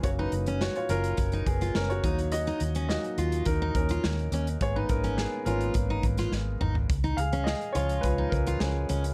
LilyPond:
<<
  \new Staff \with { instrumentName = "Upright piano" } { \time 4/4 \key des \mixolydian \tempo 4 = 105 <ges' des''>16 <ees' ces''>8. <ges' des''>16 <f' des''>16 <des' bes'>4 <ces' aes'>8 <des' bes'>16 <ges' des''>8. | <ges' ees''>4 <ges' ees''>4 <ees' bes'>8 <des' bes'>4 r8 | <aes' des''>16 <ees' ces''>16 <des' bes'>8 <ces' aes'>8 <des' bes'>4. r4 | r8 <aes' f''>8 <aes' ees''>8 <f' des''>8 <f' ces''>8 <des' bes'>8 <des' aes'>8. r16 | }
  \new Staff \with { instrumentName = "Upright piano" } { \time 4/4 \key des \mixolydian <ges bes des'>8 r2. <ges bes ees'>8~ | <ges bes ees'>4 <ges bes ees'>8 r2 r8 | <aes bes ces'>4. <aes bes ces'>8 r2 | r4. <f aes des'>8 r2 | }
  \new Staff \with { instrumentName = "Steel-string acoustic guitar" } { \time 4/4 \key des \mixolydian r16 ees'16 r16 des'16 r8 f'8 r16 ees'16 r16 f'16 r8 ees'16 r16 | r16 ees'16 r16 des'16 r8 f'8 r16 ees'16 r16 f'16 r8 des'16 r16 | r16 ees'16 r16 des'16 r8 f'8 r16 ees'16 r16 f'16 r8 ees'16 r16 | r16 ees'16 r16 des'16 r8 f'8 r16 ees'16 r16 f'16 r8 des'16 r16 | }
  \new Staff \with { instrumentName = "Fingered electric bass" } { \clef bass \time 4/4 \key des \mixolydian ges,,8 ges,,8. r16 ges,,8 ges,,8 ges,,8 ges,,8 ees,8~ | ees,8 ees,8. r16 ees,8 ees,8 ees,8 ees,8 ees,8 | aes,,8 aes,,8. r16 aes,,8 aes,,8 aes,,8 aes,,8 aes,,8 | des,8 des,8. r16 des,8 des,8 des,8 des,8 des,8 | }
  \new DrumStaff \with { instrumentName = "Drums" } \drummode { \time 4/4 <hh bd>8 hh16 hh16 sn16 hh16 hh16 hh16 <hh bd>16 hh16 <hh bd>16 hh16 sn16 hh16 <hh bd>16 hh16 | hh16 hh16 hh16 hh16 sn16 hh16 hh16 hh16 <hh bd>8 <hh bd>16 hh16 sn16 hh16 hh16 hh16 | <hh bd>8 <hh bd>16 hh16 sn8 hh16 hh16 <hh bd>8 <hh bd>16 <hh sn>16 sn8 toml16 tomfh16 | <hh bd>16 hh16 hh16 hh16 sn16 hh16 hh16 hh16 <hh bd>8 <hh bd>16 hh16 sn8 hh16 hh16 | }
>>